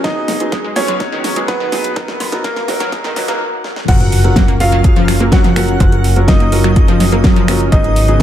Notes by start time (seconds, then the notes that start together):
Already playing: F#3
0.04 G#1 B2 D#3 F#3 G#3 B3 D#4 F#4 G#4 D#5, kick, snare, closed hi-hat
0.16 F#3 B3 D#4 G#4
0.28 snare, open hi-hat, high conga, low conga
0.40 F#3 B3 D#4 G#4, closed hi-hat, high woodblock
0.52 F#3 G#3 B3 D#4 G#4, kick, snare, closed hi-hat
0.64 G#3
0.76 F#3 B3 C#4 D#4 G#4 C#5, snare, open hi-hat, low conga
0.88 F#3, closed hi-hat, high woodblock
1.00 F#3 B3 D#4 F#4, kick, snare, closed hi-hat
1.12 D#3 F#3 B3 D#4 G#4
1.23 F#3, snare, open hi-hat, high woodblock
1.36 F#3 G#3 B3 D#4 G#4, closed hi-hat
1.48 F#3 B3 D#4 G#4 B4, kick, snare, closed hi-hat
1.60 D#3
1.72 F#3 B3 D#4 G#4, snare, open hi-hat, high woodblock
1.84 closed hi-hat
1.96 B1 D#3 F#3 B3 D#4 A#4, kick, snare, closed hi-hat
2.08 F#3 B3 D#4 A#4, snare
2.20 snare, open hi-hat, high conga, high woodblock
2.32 F#3 B3 D#4 A#4, snare, closed hi-hat
2.44 F#3 A#3 B3 D#4 A#4, kick, snare, closed hi-hat
2.56 A#3, snare, high woodblock
2.68 F#3 B3 D#4 A#4, snare, open hi-hat, high conga, low conga
2.80 F#3, snare, closed hi-hat
2.92 F#3 B3 D#4 G#4, kick, snare, closed hi-hat
3.04 D#3 F#3 B3 D#4 A#4, snare, high woodblock
3.16 F#3 B3 D#4 B4, snare, open hi-hat
3.28 F#3 A#3 B3 D#4 A#4, snare, closed hi-hat
3.64 snare
3.76 snare
3.88 F#1 C#3 F3 F#3 A#3 C#4 F4 F#4 A#4 F#5, kick, closed hi-hat, crash, sub drop
4.00 F#3 C#4 F4 A#4, closed hi-hat
4.12 open hi-hat
4.24 F#3 C#4 F4 A#4, closed hi-hat
4.36 A#3 C#4 F4 A#4, kick, snare, closed hi-hat
4.48 A#3, closed hi-hat
4.60 F#3 C#4 F4 A#4 F5, open hi-hat
4.72 F#3, closed hi-hat
4.84 F#3 C#4 F4 G#4, kick, closed hi-hat
4.96 F3 F#3 C#4 F4 A#4, closed hi-hat
5.08 F#3, finger snap, open hi-hat
5.20 F#3 A#3 C#4 F4 A#4, closed hi-hat
5.32 F#3 C#4 F4 F#4 A#4 F#5, kick, snare, closed hi-hat
5.44 F3, snare, closed hi-hat
5.56 F#3 C#4 F4 A#4, finger snap, open hi-hat
5.68 closed hi-hat
5.80 F#1 F3 F#3 C#4 F4 F#4 A#4, kick, closed hi-hat
5.92 F#3 C#4 F4 A#4, closed hi-hat
6.04 open hi-hat
6.16 F#3 C#4 F4 A#4, closed hi-hat
6.28 F#3 A#3 C#4 D#4 F4 A#4 D#5, kick, snare, closed hi-hat
6.40 A#3, closed hi-hat
6.52 F#3 C#4 F4 A#4, open hi-hat
6.64 F#3, finger snap, closed hi-hat
6.76 F#3 C#4 F4 G#4, kick, closed hi-hat
6.88 F3 F#3 C#4 F4 A#4, closed hi-hat
7.00 F#3, snare, open hi-hat
7.12 F#3 A#3 C#4 F4 A#4, closed hi-hat
7.24 F#3 C#4 F4 A#4, kick, snare, closed hi-hat
7.36 F3, closed hi-hat
7.48 F#3 C#4 F4 A#4, finger snap, open hi-hat
7.60 closed hi-hat
7.72 G#1 D#3 F#3 G#3 B3 D#4 F#4 G#4 D#5, kick, closed hi-hat
7.84 F#3 B3 D#4 G#4, closed hi-hat
7.96 open hi-hat
8.08 F#3 B3 D#4 G#4, closed hi-hat